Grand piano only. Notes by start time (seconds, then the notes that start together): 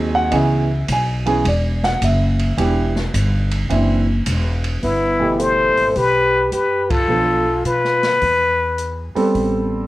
Already playing: F#3 C4 D#4 G#4 D#5
0.15 F#5
0.31 E3 B3 C#4 G#4 D#5
0.36 E5
0.92 G#5
1.26 E3 B3 C#4 G#4
1.48 D5
1.84 F#5
2.04 E5
2.58 E3 B3 D4 G4
3.70 E3 C4 D4 E4
5.20 B2 E3 A3 G4
7.08 F3 B3 D4 A4
9.15 G3 B3 C4 A4